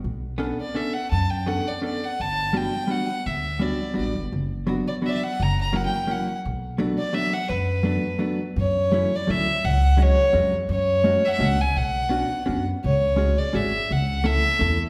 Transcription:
<<
  \new Staff \with { instrumentName = "Violin" } { \time 3/4 \key b \minor \tempo 4 = 169 r4. d''8 e''8 fis''8 | a''8 g''8 fis''8 d''8 d''8 fis''8 | a''4 g''4 fis''4 | e''4 d''4 d''8. r16 |
r4. d''8 e''32 d''32 e''16 fis''8 | ais''8 ais''8 fis''16 g''8. fis''8. r16 | r4. d''8 e''8 fis''8 | b'2~ b'8 r8 |
\key fis \minor cis''4. d''8 e''4 | fis''4 cis''4. r8 | cis''4. e''32 fis''32 e''16 fis''8 gis''8 | fis''2~ fis''8 r8 |
cis''4. d''8 e''4 | fis''4 e''4. r8 | }
  \new Staff \with { instrumentName = "Hollow-body jazz guitar" } { \time 3/4 \key b \minor r4 <b cis' d' a'>8 r8 <b cis' d' a'>8 r8 | r4 <b cis' d' a'>8 r8 <b cis' d' a'>8 r8 | r4 <g b d' fis'>8 r8 <g b d' fis'>8 r8 | r4 <g b d' fis'>8 r8 <g b d' fis'>8 r8 |
r4 <fis b d' fis'>8 r8 <fis b d' fis'>8 r8 | r4 <fis ais cis' e'>8 r8 <fis ais cis' e'>8 r8 | r4 <fis a b d'>8 r8 <fis a b d'>8 r8 | r4 <fis a b d'>8 r8 <fis a b d'>8 r8 |
\key fis \minor r4 <fis a cis' e'>8 r8 <fis a cis' e'>8 r8 | r4 <fis gis cis' fis'>8 r8 <fis gis cis' fis'>8 r8 | r4 <gis a cis' fis'>8 r8 <gis a cis' fis'>8 r8 | r4 <b cis' d' fis'>8 r8 <b cis' d' fis'>8 r8 |
r4 <gis cis' fis' gis'>8 r8 <gis cis' fis' gis'>8 r8 | r4 <a cis' e' a'>8 r8 <a cis' e' a'>8 r8 | }
  \new Staff \with { instrumentName = "Upright bass" } { \clef bass \time 3/4 \key b \minor b,,2 r4 | fis,2 r4 | g,,2 r4 | d,2 a,,8 g,,8 |
fis,,2 r4 | fis,,2 r4 | b,,2 r4 | fis,2 r4 |
\key fis \minor fis,2 d,4 | cis,2 eis,4 | fis,2 cis,4 | b,,2 fis,4 |
cis,2 gis,,4 | cis,2 e,4 | }
>>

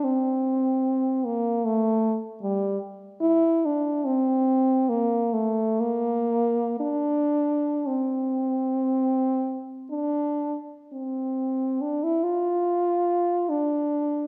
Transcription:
\new Staff \with { instrumentName = "French horn" } { \time 4/4 \key c \mixolydian \tempo 4 = 71 c'4. bes8 a8. r16 g8 r8 | e'8 d'8 c'4 bes8 a8 bes4 | d'4 c'2 d'8. r16 | c'4 d'16 e'16 f'4. d'4 | }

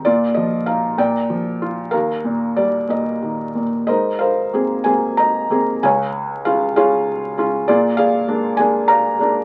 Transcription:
<<
  \new Staff \with { instrumentName = "Felt piano" } { \time 6/8 \key ees \major \tempo 4. = 64 << { d''8 ees''8 f''8 g''4. | f''4 d''8 ees''4 r8 | \key aes \major ees''8 f''4 aes''8 bes''4 | aes''4 f''8 f''4 r8 |
d''8 f''4 aes''8 bes''4 | } \\ { f'4. d''4. | bes'4. r4. | <bes' c''>8 <bes' c''>4. ees''4 | <des'' f''>4. <aes' des''>4. |
<f' aes'>8 <aes' d''>4. <d'' f''>4 | } >> }
  \new Staff \with { instrumentName = "Felt piano" } { \time 6/8 \key ees \major bes,8 f8 ees'8 bes,8 f8 f'8 | ees,8 bes,8 g8 bes,8 ees8 bes,8 | \key aes \major aes,4 <bes c' aes'>8 <bes c' aes'>4 <bes c' aes'>8 | des,4 <aes des' f'>8 <aes des' f'>4 <aes des' f'>8 |
bes,4 <aes bes d'>8 <aes bes d'>4 <aes bes d'>8 | }
>>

